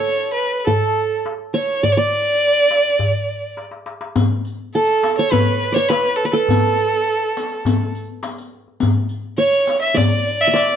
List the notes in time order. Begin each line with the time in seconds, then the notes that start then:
Already playing: A4 C#5
0.34 B4
0.59 B4
0.65 A4, darbuka dum
1.26 darbuka tek
1.54 C#5, darbuka ka
1.69 darbuka ka
1.83 D5, darbuka dum
1.92 C#5
1.97 D5
2.28 darbuka ka
2.42 darbuka ka
2.71 darbuka tek
2.85 darbuka ka
2.99 darbuka dum
3.29 darbuka ka
3.57 darbuka tek
3.71 darbuka ka
3.86 darbuka tek
4.01 darbuka ka
4.16 riq, darbuka dum
4.45 riq
4.60 darbuka ka
4.74 A4, darbuka ka
5.03 riq, darbuka tek
5.18 C#5
5.32 B4, riq, darbuka dum
5.62 riq
5.72 C#5 D5
5.89 B4, riq, darbuka tek
6.06 riq
6.16 A4, darbuka ka
6.25 B4
6.31 A4
6.48 riq, darbuka dum
6.79 riq
6.93 darbuka ka
7.37 riq
7.65 riq, darbuka dum
7.94 riq, darbuka ka
8.23 riq, darbuka tek
8.38 riq
8.53 darbuka ka
8.68 darbuka ka
8.80 riq, darbuka dum
9.09 riq, darbuka ka
9.26 darbuka ka
9.38 C#5
9.67 riq, darbuka tek
9.82 E5
9.94 D5, riq, darbuka dum
10.27 riq, darbuka ka
10.41 D5 E5
10.47 E5
10.54 D5, riq, darbuka tek
10.70 riq